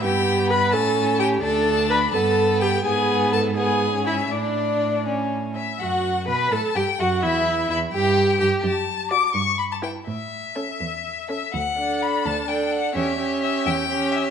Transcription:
X:1
M:6/8
L:1/16
Q:3/8=84
K:D
V:1 name="Violin"
g4 b2 a4 g2 | a4 b2 a4 g2 | ^g4 a2 g4 e2 | d6 z4 e2 |
f4 b2 a2 g2 f2 | e4 e2 g4 g2 | a4 d'2 c'2 b a g2 | e8- e2 e2 |
f4 b2 a2 g2 f2 | e4 e2 g4 e2 |]
V:2 name="Viola"
G4 B2 A4 G2 | A4 B2 A4 G2 | ^G4 A2 G4 E2 | D6 z6 |
F4 B2 A2 G2 F2 | E4 E2 G4 G2 | z4 F2 z4 E2 | z4 C2 z4 C2 |
z2 D6 D4 | C2 C6 C4 |]
V:3 name="Violin"
B,6 C6 | D6 B,6 | B,6 B,3 C3 | D6 C4 z2 |
F4 B2 A2 G2 F2 | E4 E2 G4 G2 | z4 d2 z4 B2 | z4 A2 z4 A2 |
z2 A6 A4 | G2 G6 G4 |]
V:4 name="Cello" clef=bass
G,,6 A,,6 | D,,6 G,,6 | ^G,,12 | A,,8- A,,2 z2 |
F,,4 B,,2 A,,2 G,,2 F,,2 | E,,4 E,,2 G,,4 G,,2 | F,,6 G,,6 | A,,6 E,,6 |
D,,6 D,,6 | E,,6 E,,6 |]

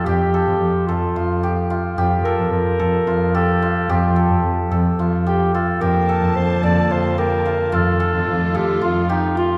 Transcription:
X:1
M:7/8
L:1/16
Q:1/4=110
K:Fmix
V:1 name="Clarinet"
G6 F6 z2 | z2 B2 B6 A4 | F6 z4 G2 A2 | B4 c2 d2 c2 B4 |
A6 G2 F2 E2 F2 |]
V:2 name="Hammered dulcimer"
G2 A4 A2 F2 G2 F2 | G2 A4 A2 F2 G2 F2 | G2 A4 A2 F2 G2 F2 | G2 A4 A2 F2 G2 F2 |
F2 A4 A2 F2 G2 F2 |]
V:3 name="String section"
z12 z2 | z12 z2 | z12 z2 | [D,B,a]12- [D,B,a]2 |
[E,A,F]12- [E,A,F]2 |]
V:4 name="Double bass" clef=bass
F,,2 z F,, F,, z F,,2 F,,6 | F,,2 z F,, F,, z F,,2 F,,6 | F,,2 z F,, F,, z F,,2 F,,6 | F,,2 z F,, F,, z F,,2 F,,6 |
F,,2 z F,, F,, z F,,2 F,,6 |]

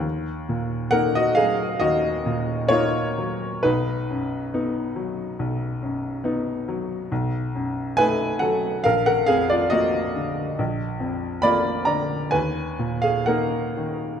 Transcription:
X:1
M:4/4
L:1/16
Q:1/4=68
K:Ebm
V:1 name="Upright piano"
z4 [Bg] [Ge] [Af]2 [Ge]4 [Fd]4 | [^D=B]12- [DB]2 z2 | z4 [=Ba]2 [=A^f]2 [_B=f] [Bg] [_Af] [F=d] [Ge]4 | z4 [=dc']2 [db]2 [ca]3 [Af] [Bg]4 |]
V:2 name="Upright piano" clef=bass
E,,2 B,,2 [B,E]2 G,2 E,,2 B,,2 [B,E]2 G,2 | =B,,,2 ^F,,2 [=B,^D]2 ^F,2 B,,,2 F,,2 [B,D]2 F,2 | =B,,,2 ^F,,2 [=A,^D]2 ^F,2 _B,,,2 =F,,2 [B,F]2 =D,2 | B,,,2 F,,2 [B,F]2 =D,2 E,,2 B,,2 [B,E]2 E,2 |]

